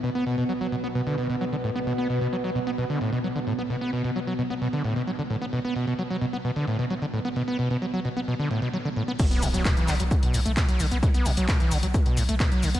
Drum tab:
CC |----------------|----------------|----------------|----------------|
HH |----------------|----------------|----------------|----------------|
SH |----------------|----------------|----------------|----------------|
CP |----------------|----------------|----------------|----------------|
BD |----------------|----------------|----------------|----------------|

CC |----------------|x---------------|----------------|
HH |----------------|xxoxxxoxxxoxxxox|xxoxxxoxxxoxxxox|
SH |----------------|xxxxxxxxx-xxxxxx|xxxxxxxxx-xxxxxx|
CP |----------------|----x-x-----x---|----x-------x---|
BD |----------------|o---o---o---o---|o---o---o---o---|